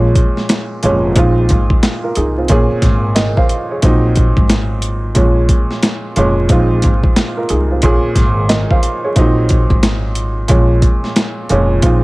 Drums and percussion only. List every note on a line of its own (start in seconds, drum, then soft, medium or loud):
0.15 kick loud
0.15 closed hi-hat medium
0.37 snare soft
0.49 snare loud
0.49 closed hi-hat loud
0.83 closed hi-hat medium
1.16 kick loud
1.16 closed hi-hat medium
1.49 kick medium
1.49 closed hi-hat medium
1.70 kick loud
1.83 snare loud
1.83 closed hi-hat loud
2.15 closed hi-hat medium
2.48 kick loud
2.48 closed hi-hat medium
2.82 kick loud
2.82 snare soft
2.82 closed hi-hat medium
3.16 snare loud
3.16 closed hi-hat loud
3.37 kick medium
3.49 closed hi-hat medium
3.82 kick loud
3.82 closed hi-hat medium
4.16 kick loud
4.16 closed hi-hat medium
4.37 kick loud
4.49 snare loud
4.49 closed hi-hat loud
4.82 closed hi-hat medium
5.15 kick loud
5.15 closed hi-hat medium
5.49 kick loud
5.49 closed hi-hat medium
5.71 snare soft
5.83 snare loud
5.83 closed hi-hat loud
6.16 closed hi-hat medium
6.49 kick loud
6.49 closed hi-hat medium
6.82 kick loud
6.82 closed hi-hat medium
7.03 kick medium
7.16 snare loud
7.16 closed hi-hat medium
7.49 closed hi-hat medium
7.82 kick loud
7.82 closed hi-hat medium
8.15 kick loud
8.15 snare soft
8.15 closed hi-hat medium
8.49 snare loud
8.49 closed hi-hat loud
8.71 kick medium
8.83 closed hi-hat medium
9.16 kick loud
9.16 closed hi-hat medium
9.49 kick loud
9.49 closed hi-hat medium
9.70 kick loud
9.83 snare loud
9.83 closed hi-hat medium
10.15 closed hi-hat medium
10.48 kick loud
10.48 closed hi-hat medium
10.82 kick loud
10.82 closed hi-hat medium
11.04 snare soft
11.16 snare loud
11.16 closed hi-hat loud
11.49 closed hi-hat medium
11.82 kick loud
11.82 closed hi-hat medium